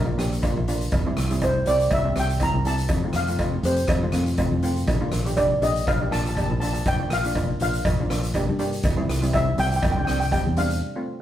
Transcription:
Already playing: fingered electric bass A#1, steel pan A#4
0.05 steel pan A#3 D4 F4
0.18 fingered electric bass A#1, steel pan A#3 D4 G4, cross-stick, closed hi-hat
0.32 closed hi-hat
0.43 steel pan A#3 D4 F4, kick, closed hi-hat, cowbell
0.57 fingered electric bass A#1
0.68 steel pan A#3 D4 F4, closed hi-hat
0.81 closed hi-hat
0.91 fingered electric bass C2, kick, closed hi-hat, cowbell
1.06 steel pan G3 C4 E4
1.17 fingered electric bass C2, cross-stick, closed hi-hat
1.31 steel pan G3 C4 E4, closed hi-hat
1.41 steel pan G3 C4 E4 C5, kick, closed hi-hat, cowbell
1.66 fingered electric bass C2, steel pan G3 C4 G4 D5, closed hi-hat
1.79 closed hi-hat
1.91 fingered electric bass C2, steel pan E5, kick, closed hi-hat, cowbell
2.05 steel pan G3 C4 G4
2.16 fingered electric bass C2, steel pan G3 C4 G4 G5, cross-stick, closed hi-hat
2.29 closed hi-hat
2.40 steel pan G3 C4 E4 A#5, kick, closed hi-hat, cowbell
2.54 fingered electric bass C2
2.65 steel pan G3 C4 E4 A5, closed hi-hat
2.78 closed hi-hat
2.88 fingered electric bass F2, kick, closed hi-hat, cowbell
3.03 steel pan A3 C4 F4
3.13 fingered electric bass F2, steel pan F5, cross-stick, closed hi-hat
3.27 steel pan A3 C4 F4, closed hi-hat
3.38 steel pan A3 C4 F4, kick, closed hi-hat, cowbell
3.63 fingered electric bass F2, steel pan A3 C4 G4 C5, closed hi-hat
3.76 closed hi-hat
3.88 fingered electric bass F2, kick, cross-stick, closed hi-hat, cowbell
4.03 steel pan A3 C4 F4
4.12 fingered electric bass F2, steel pan A3 C4 F4, cross-stick, closed hi-hat
4.26 closed hi-hat
4.37 steel pan A3 C4 F4 C5, kick, closed hi-hat, cowbell
4.51 fingered electric bass F2
4.62 steel pan A3 C4 F4 G5, closed hi-hat
4.76 closed hi-hat
4.87 fingered electric bass A#1, kick, closed hi-hat, cowbell
5.01 steel pan A#3 D4 F4
5.12 fingered electric bass A#1, cross-stick, closed hi-hat
5.25 steel pan A#3 D4 G4, closed hi-hat
5.37 steel pan A#3 D4 G4 D5, kick, closed hi-hat, cowbell
5.61 fingered electric bass A#1, steel pan A#3 D4 G4 D#5, closed hi-hat
5.76 closed hi-hat
5.87 fingered electric bass A#1, steel pan F5, kick, closed hi-hat, cowbell
6.00 steel pan A#3 D4 G4
6.11 fingered electric bass A#1, steel pan A#3 D4 F4 A5, cross-stick, closed hi-hat
6.20 steel pan A5
6.26 steel pan A5, closed hi-hat
6.35 steel pan A#3 D4 G4 A5, kick, closed hi-hat, cowbell
6.44 steel pan A5
6.50 fingered electric bass A#1, steel pan A5
6.60 steel pan A#3 D4 F4 A5, closed hi-hat
6.65 steel pan A5
6.73 steel pan A5, closed hi-hat
6.85 fingered electric bass A#1, steel pan G5, kick, closed hi-hat, cowbell
6.99 steel pan A#3 D4 F4
7.10 fingered electric bass A#1, steel pan F5, cross-stick, closed hi-hat
7.24 steel pan A#3 D4 F4, closed hi-hat
7.35 steel pan A#3 D4 F4, kick, closed hi-hat, cowbell
7.60 fingered electric bass A#1, steel pan A#3 D4 F4 F5, closed hi-hat
7.73 closed hi-hat
7.85 fingered electric bass A#1, kick, closed hi-hat, cowbell
7.99 steel pan A#3 D4 F4
8.10 fingered electric bass A#1, steel pan A#3 D4 F4, cross-stick, closed hi-hat
8.23 closed hi-hat
8.34 steel pan A#3 D4 G4, kick, closed hi-hat, cowbell
8.49 fingered electric bass G2
8.59 steel pan A#3 D4 G4, closed hi-hat
8.72 closed hi-hat
8.83 fingered electric bass C2, kick, closed hi-hat, cowbell
8.97 steel pan G3 C4 E4
9.09 fingered electric bass C2, cross-stick, closed hi-hat
9.22 steel pan G3 C4 E4, closed hi-hat
9.33 steel pan G3 C4 E4 E5, kick, closed hi-hat, cowbell
9.58 fingered electric bass C2, steel pan G3 C4 E4 G5, closed hi-hat
9.67 steel pan G5
9.71 closed hi-hat
9.76 steel pan G5
9.83 fingered electric bass C2, steel pan G5, kick, closed hi-hat, cowbell
9.92 steel pan G5
9.96 steel pan G3 C4 D4 G5
10.05 fingered electric bass C2, steel pan G3 C4 D4 G5, cross-stick, closed hi-hat
10.11 steel pan G5
10.20 steel pan G5, closed hi-hat
10.31 steel pan G3 C4 G4 G5, kick, closed hi-hat, cowbell
10.46 fingered electric bass E2
10.57 steel pan G3 C4 D4 F5, closed hi-hat
10.70 closed hi-hat
10.96 steel pan A3 C4 F4

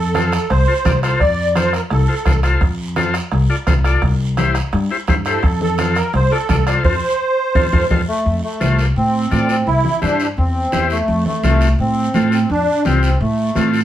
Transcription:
Already playing: upright bass F2, accordion A4
0.14 transistor combo organ F4 A4 C5, bombo rim, high conga, short guiro
0.32 bombo rim, short guiro
0.50 upright bass C2, accordion C5, bombo rim, long guiro
0.68 transistor combo organ F4 A4 C5
0.85 upright bass C2, transistor combo organ F4 A4 D5, bombo low, bombo rim, high conga, short guiro
1.03 transistor combo organ F4 A4 C5, accordion C5, bombo rim, short guiro
1.20 upright bass F2, accordion D5, bombo low, bombo rim, long guiro
1.55 transistor combo organ F4 A4 C5, accordion C5, bombo rim, high conga, short guiro
1.73 accordion A#4, bombo rim, short guiro
1.90 upright bass C2, accordion A4, bombo rim, long guiro
2.08 transistor combo organ F4 A4 C5
2.25 upright bass C2, transistor combo organ F4 A4 C5, bombo low, bombo rim, high conga, short guiro
2.43 transistor combo organ F4 A4 C5, bombo rim, short guiro
2.61 upright bass F2, bombo low, bombo rim, long guiro
2.96 transistor combo organ F4 A4 C5, bombo rim, high conga, short guiro
3.14 bombo rim, short guiro
3.31 upright bass C2, bombo rim, long guiro
3.50 transistor combo organ F4 A4 D5
3.67 upright bass C2, transistor combo organ F4 A4 C5, bombo low, bombo rim, high conga, short guiro
3.84 transistor combo organ F4 A4 D5, bombo rim, short guiro
4.02 upright bass C2, bombo low, bombo rim, long guiro
4.37 transistor combo organ E4 G4 C5, bombo rim, high conga, short guiro
4.55 bombo rim, short guiro
4.72 upright bass G2, bombo rim, long guiro
4.91 transistor combo organ E4 G4 C5
5.08 upright bass G2, transistor combo organ E4 G4 C5, bombo low, bombo rim, high conga, short guiro
5.25 transistor combo organ E4 G4 C5, accordion A4, bombo rim, short guiro
5.43 upright bass F2, bombo low, bombo rim, long guiro
5.61 accordion A4, high conga
5.78 transistor combo organ F4 A4 C5, bombo rim, high conga, short guiro
5.95 accordion A#4, bombo rim, short guiro
6.13 upright bass C2, accordion C5, bombo rim, long guiro
6.32 transistor combo organ F4 A4 D5, accordion A4
6.49 upright bass C2, transistor combo organ F4 A4 D5, bombo low, bombo rim, high conga, short guiro
6.67 transistor combo organ F4 A4 C5, accordion D5, bombo rim, short guiro
6.84 upright bass F2, transistor combo organ F4 A4 C5, accordion C5, bombo low, high conga, long guiro
7.55 upright bass F2, transistor combo organ F4 A4 C5, bombo low, high conga, long guiro
7.73 upright bass F2, transistor combo organ F4 A4 C5, bombo low, high conga, long guiro
7.90 upright bass F2, transistor combo organ F4 A4 C5, bombo low, high conga, long guiro
8.08 accordion A3
8.26 upright bass F2, long guiro
8.43 accordion A3
8.60 upright bass C2, transistor combo organ F4 A4 C5, high conga, short guiro
8.79 accordion A#3, short guiro
8.96 upright bass A2, accordion C4, long guiro
9.31 upright bass A2, transistor combo organ F4 A4 D5, high conga, short guiro
9.49 accordion C4, short guiro
9.67 upright bass C2, accordion E4, long guiro
9.84 high conga
10.02 upright bass G2, accordion D4, transistor combo organ E4 G4 C5, high conga, short guiro
10.20 accordion D4, short guiro
10.37 upright bass E2, accordion C4, long guiro
10.72 upright bass E2, transistor combo organ E4 G4 C5, high conga, short guiro
10.90 accordion A3, short guiro
11.08 upright bass F2, long guiro
11.26 accordion A3, high conga
11.43 upright bass C2, transistor combo organ C4 F4 A4, high conga, short guiro
11.61 short guiro
11.79 upright bass A2, accordion C4, long guiro
12.14 upright bass A2, transistor combo organ C4 F4 A4, high conga, short guiro
12.32 accordion C4, short guiro
12.49 upright bass F2, accordion D4, long guiro
12.85 upright bass C2, transistor combo organ C4 F4 G4, accordion C4, high conga, short guiro
13.03 short guiro
13.20 upright bass A2, accordion A3, long guiro
13.55 upright bass A2, transistor combo organ C4 F4 A4, high conga, short guiro
13.74 short guiro

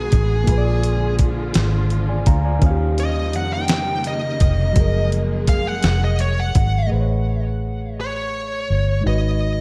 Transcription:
Already playing: string section D#3 G#3 B3 F#4, reed electric piano G#3 F#4 G#4 B4, lead electric guitar G#4
0.12 fingered electric bass A1, kick, closed hi-hat
0.44 reed electric piano A#3 F4, kick, closed hi-hat
0.48 fingered electric bass A#1, string section D3 F3 F4, reed electric piano G#4 B4
0.58 reed electric piano D5
0.83 closed hi-hat
1.19 kick, closed hi-hat
1.54 fingered electric bass G#1, snare, closed hi-hat
1.90 closed hi-hat
2.09 reed electric piano D5 G#5
2.26 fingered electric bass D2, reed electric piano F5 A#5, kick, closed hi-hat
2.45 reed electric piano D5 G#5
2.59 fingered electric bass D#2, string section C#3 G3 A#3 D#4, reed electric piano D#3 C#4, kick, closed hi-hat
2.64 reed electric piano F4 F5
2.70 reed electric piano G4
2.98 lead electric guitar D#5, closed hi-hat
3.33 fingered electric bass F2, lead electric guitar F#5, closed hi-hat
3.53 lead electric guitar G5
3.68 snare, closed hi-hat
4.04 lead electric guitar D#5, closed hi-hat
4.40 fingered electric bass F1, kick, closed hi-hat
4.73 fingered electric bass F#1, reed electric piano F3 F#3, string section G#3 G#4, kick, closed hi-hat
4.78 reed electric piano G#4 A#4
5.12 closed hi-hat
5.47 lead electric guitar F5, kick, closed hi-hat
5.67 lead electric guitar F#5
5.83 fingered electric bass F1, lead electric guitar F#5, snare, closed hi-hat
6.04 lead electric guitar D#5
6.19 lead electric guitar C#5, closed hi-hat
6.40 lead electric guitar F#5
6.55 fingered electric bass G#1, kick, closed hi-hat
6.87 reed electric piano A3 G#4
6.91 fingered electric bass A1, reed electric piano B4 C5
7.00 reed electric piano C#5
8.01 lead electric guitar C#5
8.70 fingered electric bass G1
9.01 reed electric piano G#3 D#4
9.06 fingered electric bass G#1, reed electric piano F#4 B4, lead electric guitar D#5

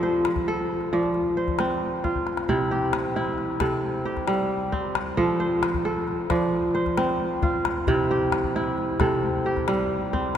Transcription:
Already playing: kora F3 C4 G4 A4
0.03 kora C5, calabash click
0.25 calabash click
0.36 calabash thump, calabash click
0.48 kora A4
0.81 calabash click
0.93 kora F3 D5
1.03 calabash click
1.14 calabash click
1.37 kora C5
1.48 calabash thump
1.59 kora C4, calabash click
2.04 kora F4, calabash thump, calabash click
2.15 calabash thump
2.27 calabash click
2.37 calabash click
2.48 kora C3 E4, calabash thump
2.71 kora G4
2.93 calabash click
3.16 kora E4
3.38 calabash click
3.60 kora C3 A4, calabash thump, calabash click
4.05 kora G4, calabash click
4.17 calabash thump, calabash click
4.28 kora G3, calabash click
4.72 kora C4, calabash thump, calabash click
4.95 calabash click
5.17 kora F3 A4, calabash thump
5.40 kora C5
5.63 calabash click
5.74 calabash thump
5.85 kora A4
6.08 calabash click
6.30 kora F3 D5, calabash thump, calabash click
6.75 kora C5, calabash click
6.86 calabash thump, calabash click
6.97 kora C4, calabash click
7.42 kora F4, calabash thump, calabash click
7.65 calabash click
7.87 kora C3 E4, calabash thump
8.11 kora G4
8.32 calabash click
8.44 calabash thump
8.56 kora E4
8.78 calabash click
9.00 kora C3 A4, calabash thump, calabash click
9.45 kora G4, calabash click
9.57 calabash thump, calabash click
9.68 kora G3, calabash click
10.13 kora C4, calabash thump, calabash click

